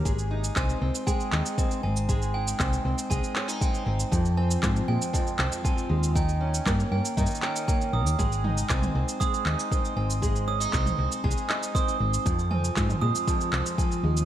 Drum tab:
SH |x-----x-----------x-----x-----x-----------x-----x-----x-----------x-----x-----x-----------x-----|x-----x-----------x-----x-----x-----------x-----x-----x-----------x-----x-----x-----------x-----|x-----x-----------x-----x-----x-----------x-----x-----x-----------x-----x-----x-----------x-----|x-----x-----------x-----x-----x-----------x-----x---x-x-x---------x-----x-----x-----------x-----|
CP |------------------------x-----------------------------------x-----------------------------------|------------------------x-----------------------------------x-----------------------------------|------------------------x-----------------------------------x-----------------------------------|------------------------x-----------------------------------x-----------------------------------|
T2 |------------------------------------------------------------------------------------------------|------------------------------------------------------------------------------------------------|------------------------------------------------------------------------------------------------|------------------------------------------------------------------------------------------------|
BD |o-----------------------o-----------------------o-----------------------o-----------------------|o-----------------------o-----------------------o-----------------------o-----------------------|o-----------------------o-----------------------o-----------------------o-----------------------|o-----------------------o-----------------------o-----------------------o-----------------------|

SH |x-----x-----------x-----x-----x-----------x-----x-----x-----------x-----x-----x-----------x-----|x-----x-----------x-----x-----x-----------x--------x--x-----------x-----x-----x-----------x-----|x-----x-----------x-----x-----x-----------x-----x-----x-----------x-----x-----x-----------x-----|
CP |------------------------x-----------------------------------x-----------------------------------|------------------------x-----------------------------------x-----------------------------------|------------------------x-----------------------------------x-----------------------------------|
T2 |------------o-----------------o-----------------------------------------------------------------|------------------------------o-----------------------------------------------------------------|------------o-----------------o-----------------------------------------------------------------|
BD |o-----------------------o-----------------------o-----------------------o-----------------------|o-----------------------o-----------------------o-----------------------o-----------------------|o-----------------------o-----------------------o-----------------------o-----------------------|